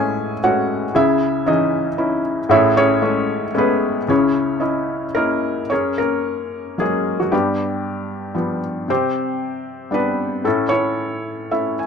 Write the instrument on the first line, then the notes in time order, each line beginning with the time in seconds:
felt piano
Already playing: A1 A2 G#3 A3 C#4 E4 G#4 C#5 E5 G#5
0.43 G#3 A3 C#4 F#4 C#5 F#5
0.95 C#2 C#3 E4 G#4 E5
1.46 E3 C#4 D#4 G#4 D#5
1.98 C#4 D#4 E4
2.49 A1 A2 E4 G#4 C#5 E5
2.77 C#4 G#4 C#5
3.02 G#3 A3 C#4
3.55 G#3 A3 B3 C#4 G#4 B4
4.08 C#2 C#3 C#4 E4 G#4 C#5
4.60 C#4 E4 D#5
5.15 A#3 C#4 E4 A#4 D#5
5.70 F#2 C#4 G#4 A#4 C#5
5.98 A#3 C#4 A#4
6.78 F#3 G#3 A#3 C#4 G#4
7.20 F#3 F#4
7.32 G2 G3 B3 D4 G4
8.35 F3 G3 B3
8.88 C3 C4 G4 C5
9.91 G3 B3 D4 B4
10.44 A2 A3 C#4 E4 A4
10.69 C#4 E4 C#5
11.51 A3 C#4 E4 E5
11.79 G#5